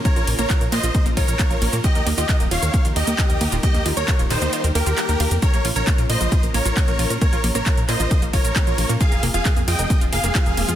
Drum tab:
RD |--x---x---x---x-|--x---x---x---x-|--x---x---x---x-|--x---x---x---x-|
HH |xxoxxxoxxxoxxxox|xxoxxxoxxxoxxxox|xxoxxxoxxxoxxxox|xxoxxxoxxxoxxxox|
SH |xx-xxx-xxx-xxx-x|xx-xxx-xxx-xxx-x|xx-xxx-xxx-xxx-x|xx-xxx-xxx-xxx-x|
CP |----x-x-----x---|----x-------x---|----x-x-----x---|----x-------x---|
BD |o---o---o-o-o---|o---o---o---o---|o---o-----------|o---o---o---o---|

RD |--x---x---x---x-|--x---x---x---x-|
HH |xxoxxxoxxxoxxxox|xxoxxxoxxxoxxxox|
SH |xx-xxx-xxx-xxx-x|xx-xxx-xxx-xxx-x|
CP |----x-x-----x---|----x-------x---|
BD |o---o---o-o-o---|o---o---o---o---|